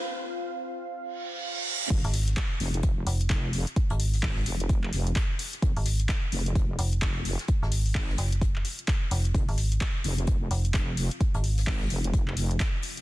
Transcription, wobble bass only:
X:1
M:4/4
L:1/8
Q:"Swing 16ths" 1/4=129
K:Fm
V:1 name="Wobble bass" clef=bass
z8 | F,,, z2 F,,,2 z F,,, z | z2 A,,, F,,,2 F,,, z2 | F,,, z2 F,,,2 z F,,, z |
z2 A,,, z4 z | F,,, z2 F,,,2 z F,,, z | z2 A,,, F,,,2 F,,, z2 |]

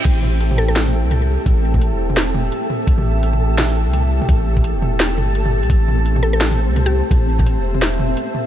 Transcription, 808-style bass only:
X:1
M:4/4
L:1/16
Q:"Swing 16ths" 1/4=170
K:Am
V:1 name="808-style bass" clef=bass
A,,,8- A,,,3 C,,4 z | A,,,4- A,,, E,,,6- E,,, z4 | A,,,8- A,,,3 C,,4 z | A,,,4- A,,, E,,,4- E,,, G,,,4- G,,, C,, |
A,,,8- A,,,3 C,,4 z | A,,,4- A,,, E,,,6- E,,, z4 |]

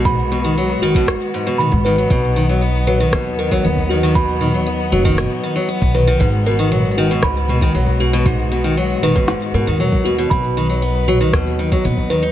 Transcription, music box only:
X:1
M:4/4
L:1/8
Q:1/4=117
K:B
V:1 name="Music box"
b z2 F z2 b B | z3 B z A z F | b z2 F z3 B | z A z F b z2 F |
z3 B z A z F | b z2 F z3 B |]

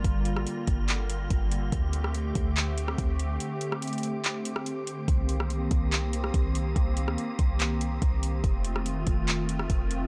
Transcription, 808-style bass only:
X:1
M:4/4
L:1/16
Q:1/4=143
K:Cdor
V:1 name="808-style bass" clef=bass
G,,,3 A,,, z2 G,,,6 G,,,4 | D,,6 D,,6 D,,4 | z16 | C,,6 C,,6 C,,4 |
C,,3 D,, z2 C,,6 C,,4 | F,,,6 F,,,6 F,,,4 |]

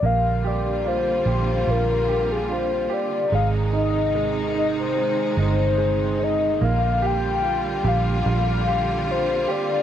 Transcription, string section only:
X:1
M:4/4
L:1/8
Q:1/4=73
K:Bbmix
V:1 name="String section" clef=bass
[D,G,B,F]8 | [C,E,A,E]8 | [D,G,B,F]8 |]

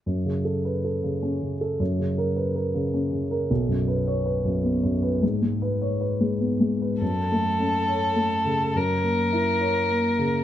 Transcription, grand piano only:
X:1
M:3/4
L:1/8
Q:1/4=104
K:F#m
V:1 name="Grand piano"
(3F,, C, A (3B A C, (3C C, A | (3F,, C, ^A (3B A C, (3C C, A | (3B,,, F,, B (3c B F,, (3B, F,, B | (3G,, G, B (3c B G, (3B, G, B |
F,, A, C c A, C, | F,, ^A, E c A, C, |]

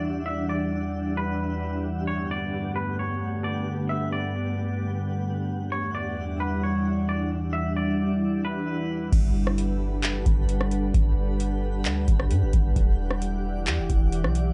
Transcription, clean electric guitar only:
X:1
M:4/4
L:1/8
Q:1/4=132
K:G
V:1 name="Clean electric guitar"
z e d3 B3 | z ^c d2 B c2 d | z e d6 | z ^c d2 B c2 d |
z e d3 B3 | z8 | z8 | z8 |]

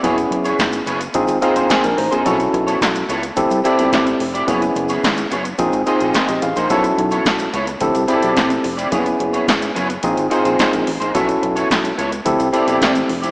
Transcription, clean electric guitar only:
X:1
M:4/4
L:1/16
Q:1/4=108
K:F#dor
V:1 name="Clean electric guitar"
[B,EGc] z2 [B,EGc] z2 [B,EGc] z3 [^A,DG^B] [A,DGB] [A,DGB] z2 [A,DGB] | [B,EAc] z2 [B,EAc] z2 [B,EAc] z3 [=CE=G=d] [CEGd] [CEGd] z2 [CEGd] | [B,EGc] z2 [B,EGc] z2 [B,EGc] z3 [^A,DG^B] [A,DGB] [A,DGB] z2 [A,DGB] | [B,EAc] z2 [B,EAc] z2 [B,EAc] z3 [=CE=G=d] [CEGd] [CEGd] z2 [CEGd] |
[B,EGc] z2 [B,EGc] z2 [B,EGc] z3 [^A,DG^B] [A,DGB] [A,DGB] z2 [A,DGB] | [B,EAc] z2 [B,EAc] z2 [B,EAc] z3 [=CE=G=d] [CEGd] [CEGd] z2 [CEGd] |]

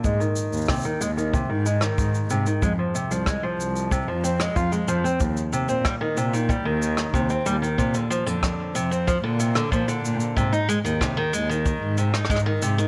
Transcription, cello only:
X:1
M:4/4
L:1/16
Q:1/4=93
K:Ablyd
V:1 name="Cello" clef=bass
A,, z2 E,, z2 E,,3 A,,3 A,,2 A,, z | F,, z2 C,, z2 C,,3 F,,3 F,,2 F,, z | E,, z2 B,, z2 B,,3 E,,3 E,,2 E,, z | B,, z2 F,, z2 F,,3 B,,3 B,,2 B,, z |
A,, z2 E,, z2 E,,3 A,,3 A,,2 A,, z |]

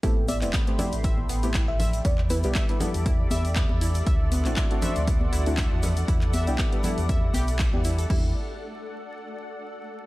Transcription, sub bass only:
X:1
M:4/4
L:1/16
Q:"Swing 16ths" 1/4=119
K:Em
V:1 name="Sub bass" clef=bass
A,,,3 E,,, z3 A,,,3 A,,,3 A,,,3 | E,,3 B,,, z3 E,,3 E,,3 E,,3 | D,,3 A,,, z3 D,,3 D,,3 E,,3 | E,,3 B,,, z3 E,,3 B,,,3 E,,3 |
E,,2 z12 z2 |]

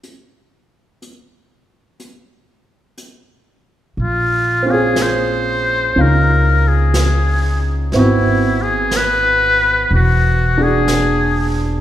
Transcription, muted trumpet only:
X:1
M:4/4
L:1/8
Q:"Swing" 1/4=61
K:Abmix
V:1 name="Muted trumpet"
z8 | F A c2 B A2 z | =E A =B2 G A2 z |]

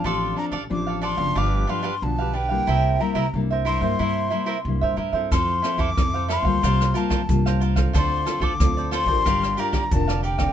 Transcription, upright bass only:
X:1
M:4/4
L:1/16
Q:1/4=91
K:F
V:1 name="Upright bass" clef=bass
A,,,2 z A,,, A,,,3 _G,,, =G,,,2 z2 =B,,,4 | C,,2 z C,, C,,3 G,, G,,2 z2 C,, B,, A,, G,, | F,,2 z F,, F,,3 D,, C,,2 z2 C,,4 | D,,2 z D,, D,,3 A,,, G,,,2 z2 F,,,4 |]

